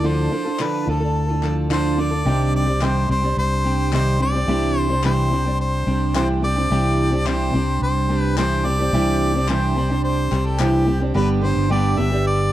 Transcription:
Already playing: D2
0.04 D3 F3 D4 F4 A4 C5
0.31 F3 D4 F4 A4
0.45 D4 F4 A4
0.59 D3 F3 D4 F4 A4 B4, clap
0.87 D2 F3 D4 F4 A4
1.00 D4 F4 A4
1.28 D4 F4 A4
1.42 F3 D4 F4 A4, clap
1.69 D3 F3 D4 F4 A4 C5, clap
1.97 F3 D4 F4 A4 D5
2.11 D4 F4 A4
2.25 C2 C3 D#3 G3 C4 D4 G4
2.56 D5
2.67 G3 C4 D4 G4
2.81 C3 D#3 G3 C4 D4 G4 C5, clap
3.09 C2 G3 C4 D4 G4 C5
3.23 G3 C4 D4 G4
3.37 C2 C5
3.64 G3 C4 D4 G4
3.92 C3 D#3 G3 C4 D4 G4 C5, clap
4.20 G3 C4 D4 G4 D5
4.34 G3 C4 D4 G4
4.47 C2 C3 E3 G3 C4 D4 G4
4.79 C5
4.89 G3 C4 D4 G4
5.04 C3 E3 G3 C4 D4 G4 C5, clap
5.31 G3 C4 D4 G4
5.45 G3 C4 D4 G4
5.61 C5
5.86 C2 G3 C4 D4 G4
6.14 C3 E3 G3 C4 D4 G4 C5, clap
6.42 G3 C4 D4 G4 D5
6.57 G3 C4 D4 G4
6.70 C2 C3 E3 G3 C4 D4 G4
7.12 G3 C4 D4 G4
7.26 C3 E3 G3 C4 D4 G4 C5, clap
7.53 C2 G3 C4 D4 G4
7.82 C2 C5
8.09 G3 C4 D4 G4
8.20 B4
8.37 C3 E3 G3 C4 D4 G4 C5, clap
8.65 G3 C4 D4 G4 D5
8.79 G3 C4 D4 G4
8.93 C2 C3 E3 G3 C4 D4 G4
9.34 G3 C4 D4 G4
9.48 C3 E3 G3 C4 D4 G4 C5, clap
9.76 G3 C4 D4 G4
9.90 G3 C4 D4 G4
10.04 C5
10.31 C2 G3 C4 D4 G4, clap
10.46 A4
10.59 C3 E3 G3 C4 D4 G4, clap
10.86 G3 C4 D4 G4
11.00 G3 C4 D4 G4
11.14 G1 G2 D3 G3 B3 D4 G4 B4
11.41 G3 B3 D4 G4 C5
11.57 G1
11.70 G2 D3 G3 B3 D4 G4 D5
11.97 G1 G3 B3 D4 G4 E5
12.11 G3 B3 D4 G4
12.27 D5

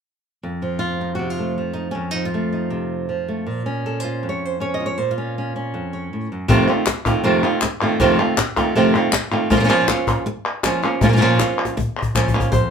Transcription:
0.43 F2
0.62 F3
0.79 F4
1.01 D#4
1.15 F#4
1.19 C3
1.30 F4
1.39 A3
1.58 F3
1.73 D#4
1.91 F2 C#4
2.11 F3 D#4
2.25 F4
2.34 A3
2.52 D#4
2.70 C3
3.09 F3
3.28 A3
3.46 A#2
3.66 C#4
3.86 A4
4.00 F4 C5
4.23 F2
4.29 C#5
4.45 C5
4.60 C#4 C#5
4.74 D#5
4.80 F4
4.86 C#5
4.97 A#2 C5
5.11 F4
5.18 C#4
5.38 C#4
5.56 C#4
5.74 F2
5.93 C#5
6.13 A2
6.32 F#2
6.48 F2 C3 D#3 A3 C4 F4, cajon bass
6.68 D#3 A3 C4 F4
6.86 muted nylon-string guitar stroke, cajon slap, clap
7.06 D#3 A3 C4 F4, cajon bass
7.24 F2 C3 D#3 A3 C4 F4
7.43 D#3 A3 C4 F4
7.61 muted nylon-string guitar stroke, cajon slap, clap
7.81 D#3 A3 C4 F4
8.00 F2 C3 D#3 A3 C4 F4, cajon bass, cajon slap
8.19 D#3 A3 C4 F4
8.38 muted nylon-string guitar stroke, cajon slap, clap
8.56 D#3 A3 C4 F4, cajon bass, cajon slap
8.75 F2 C3 D#3 A3 C4 F4
8.95 D#3 A3 C4 F4
9.12 muted nylon-string guitar stroke, cajon slap, clap
9.31 D#3 A3 C4 F4
9.50 A#2 F3 A#3 C#4 F4, cajon bass, cajon slap
9.55 F3 A#3 C#4 F4
9.60 F3 A#3 C#4 F4
9.64 F3 A#3 C#4 F4
9.69 A#2 F3 A#3 C#4 F4
9.88 A#3 C#4 F4, cajon slap, clap
10.07 cajon bass
10.26 muted nylon-string guitar stroke
10.63 F3 A#3 C#4 F4, cajon slap, clap
10.83 A#3 C#4 F4
11.01 A#2 F3 A#3 C#4 F4, cajon bass
11.07 F3 A#3 C#4 F4
11.13 F3 A#3 C#4 F4
11.17 A#2 A#3 C#4 F4
11.22 F3 A#3 C#4 F4
11.39 A#3 C#4 F4, cajon slap, clap
11.65 cajon slap
11.77 muted nylon-string guitar stroke, cajon bass
12.02 cajon bass
12.15 F3 A#3 C#4 F4, cajon bass, clap
12.28 cajon bass
12.34 A#3 C#4 F4
12.40 cajon bass
12.52 F2 C5, cajon bass

